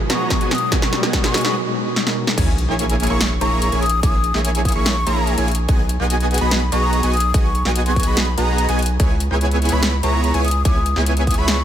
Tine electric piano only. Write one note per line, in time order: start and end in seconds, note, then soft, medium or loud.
0.00 0.71 B2 medium
0.00 0.71 G#3 medium
0.00 0.72 D#4 medium
0.00 0.72 F#4 medium
0.00 0.73 A#4 medium
0.71 1.00 B2 medium
0.71 1.00 G#3 medium
0.71 1.01 D#4 medium
0.71 1.01 F#4 medium
0.71 1.01 A#4 medium
1.02 1.17 B2 medium
1.02 1.17 G#3 medium
1.02 1.18 D#4 medium
1.02 1.18 F#4 medium
1.02 1.18 A#4 loud
1.32 2.03 B2 medium
1.32 2.04 G#3 medium
1.32 2.04 D#4 medium
1.32 2.05 F#4 medium
1.32 2.05 C#5 medium
2.06 2.35 B2 medium
2.06 2.35 G#3 medium
2.06 2.35 D#4 medium
2.06 2.35 F#4 medium
2.06 2.36 A#4 medium